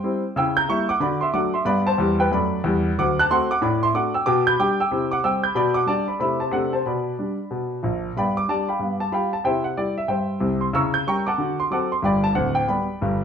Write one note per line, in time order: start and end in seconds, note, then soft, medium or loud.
0.00 0.22 G3 medium
0.00 0.34 C5 medium
0.00 0.27 G5 medium
0.04 0.22 C4 medium
0.04 0.22 E4 soft
0.36 0.64 C#3 medium
0.36 0.56 E4 medium
0.36 0.56 G5 medium
0.36 0.54 E6 loud
0.57 0.69 A#5 medium
0.57 0.67 G6 loud
0.69 0.87 G3 medium
0.69 0.87 A#3 medium
0.69 0.87 E4 medium
0.69 0.89 E5 medium
0.69 0.87 C#6 loud
0.89 1.02 F#5 medium
0.89 1.00 D6 loud
1.00 1.29 D3 medium
1.00 1.20 F#4 medium
1.00 1.21 D5 medium
1.00 1.19 B5 medium
1.21 1.34 E5 medium
1.21 1.32 C6 medium
1.33 1.52 F#3 medium
1.33 1.52 A3 medium
1.33 1.52 D4 medium
1.33 1.53 F#5 medium
1.33 1.51 D6 medium
1.54 1.66 E5 medium
1.54 1.65 C6 medium
1.65 1.92 G2 medium
1.65 1.92 B3 medium
1.65 1.85 D5 medium
1.65 1.83 B5 loud
1.87 2.17 C5 medium
1.87 2.14 A5 loud
1.98 2.25 E2 medium
1.98 2.26 G3 medium
2.20 2.32 B4 medium
2.20 2.30 G5 medium
2.32 2.58 F#2 medium
2.32 2.59 A3 medium
2.32 2.94 D5 medium
2.32 2.88 B5 medium
2.64 2.90 E2 medium
2.64 2.91 G3 medium
2.98 3.25 D2 medium
2.98 3.17 F#3 medium
2.98 3.17 F#5 medium
2.98 3.15 D6 loud
3.19 3.30 A5 medium
3.19 3.29 F#6 loud
3.30 3.48 A3 medium
3.30 3.48 C4 medium
3.30 3.49 F#4 medium
3.30 3.50 F#5 medium
3.30 3.47 C6 loud
3.51 3.62 F#5 medium
3.51 3.61 D6 loud
3.62 3.89 A2 medium
3.62 3.81 D5 medium
3.62 3.79 B5 medium
3.83 3.95 E5 medium
3.83 3.93 C6 loud
3.94 4.12 A3 medium
3.94 4.12 D4 medium
3.94 4.13 F#4 medium
3.94 4.14 F#5 medium
3.94 4.12 D6 medium
4.14 4.26 G5 medium
4.14 4.25 E6 medium
4.26 4.54 B2 loud
4.26 4.46 G5 medium
4.26 4.43 D6 loud
4.47 4.59 B5 medium
4.47 4.57 G6 loud
4.59 4.77 G3 medium
4.59 4.77 D4 soft
4.59 4.77 G4 medium
4.59 4.79 G5 medium
4.59 4.77 D6 loud
4.80 5.10 G5 medium
4.80 5.07 E6 medium
4.91 5.19 C3 medium
4.91 5.10 E4 medium
5.12 5.24 F#5 medium
5.12 5.22 D6 medium
5.24 5.42 G3 medium
5.24 5.42 C4 soft
5.24 5.42 G4 medium
5.24 5.44 G5 medium
5.24 5.41 E6 loud
5.44 5.54 B5 medium
5.44 5.54 G6 medium
5.55 5.83 B2 medium
5.55 5.75 D5 medium
5.55 5.73 B5 loud
5.74 5.88 F#5 medium
5.74 5.86 D6 loud
5.86 6.05 G3 soft
5.86 6.05 D4 medium
5.86 6.06 G4 soft
5.86 6.08 D5 medium
5.86 6.05 A5 medium
6.08 6.21 D5 medium
6.08 6.19 B5 medium
6.19 6.48 C3 medium
6.19 6.38 A3 soft
6.19 6.38 C4 soft
6.19 6.39 E4 soft
6.19 6.40 E5 medium
6.19 6.38 B5 medium
6.40 6.53 C5 soft
6.40 6.51 A5 medium
6.51 6.80 C3 medium
6.51 6.70 A3 soft
6.51 6.71 D4 soft
6.51 6.72 A4 medium
6.51 6.70 F#5 medium
6.73 6.86 C5 medium
6.73 6.84 A5 medium
6.86 7.14 B2 medium
6.86 8.00 D5 medium
6.86 7.86 B5 medium
7.19 7.36 G3 soft
7.19 7.37 D4 medium
7.51 7.78 B2 medium
7.83 8.09 A#1 medium
7.83 8.09 A#2 medium
8.17 8.44 G2 medium
8.17 8.36 B3 soft
8.17 8.36 D5 medium
8.17 8.36 G5 medium
8.17 8.34 B5 medium
8.37 8.47 D6 loud
8.48 8.66 G3 soft
8.48 8.66 D4 soft
8.48 8.67 G4 soft
8.48 8.68 D5 medium
8.48 8.66 A5 medium
8.69 8.99 F5 medium
8.69 8.99 G5 medium
8.69 8.96 B5 medium
8.79 9.07 G2 medium
8.79 9.00 B3 soft
9.00 9.11 A5 medium
9.12 9.30 G3 soft
9.12 9.30 F4 soft
9.12 9.31 G4 soft
9.12 9.32 F5 medium
9.12 9.32 G5 medium
9.12 9.30 B5 medium
9.33 9.43 A5 medium
9.44 9.72 C3 medium
9.44 9.64 E4 medium
9.44 9.64 C5 medium
9.44 9.64 E5 medium
9.44 9.62 G5 medium
9.64 9.75 F#5 medium
9.77 9.95 G3 soft
9.77 9.95 E4 soft
9.77 9.96 G4 soft
9.77 9.95 D5 medium
9.98 10.08 E5 medium
10.08 10.36 G2 medium
10.08 10.59 C5 medium
10.08 10.59 E5 medium
10.08 10.54 G5 medium
10.40 10.67 C2 medium
10.40 10.67 C3 medium
10.61 10.72 C6 medium
10.73 11.01 C#3 medium
10.73 10.93 E4 soft
10.73 10.94 A#5 medium
10.73 10.94 C#6 medium
10.73 10.92 E6 loud
10.94 11.05 G6 loud
11.07 11.25 G3 medium
11.07 11.25 C#4 soft
11.07 11.26 A#4 soft
11.07 11.27 G5 medium
11.07 11.27 A#5 medium
11.07 11.25 C#6 loud
11.27 11.57 F#5 medium
11.27 11.57 A5 medium
11.27 11.54 D6 medium
11.38 11.66 D3 medium
11.38 11.57 F#4 medium
11.60 11.70 C6 medium
11.71 11.89 F#3 soft
11.71 11.89 C4 medium
11.71 11.89 A4 medium
11.71 11.91 F#5 medium
11.71 11.91 A5 medium
11.71 11.89 D6 medium
11.92 12.02 C6 medium
12.02 12.29 G1 medium
12.02 12.29 G2 medium
12.02 12.23 D5 medium
12.02 12.23 G5 medium
12.02 12.21 B5 medium
12.24 12.34 A5 loud
12.35 12.61 D1 medium
12.35 12.61 D2 medium
12.35 12.53 F#5 medium
12.55 12.66 G5 medium
12.68 12.86 G3 soft
12.68 12.86 B3 medium
12.68 12.86 G4 medium
12.68 13.24 D5 medium
12.68 13.24 G5 medium
12.68 13.23 B5 medium
13.01 13.24 G1 medium
13.01 13.24 G2 medium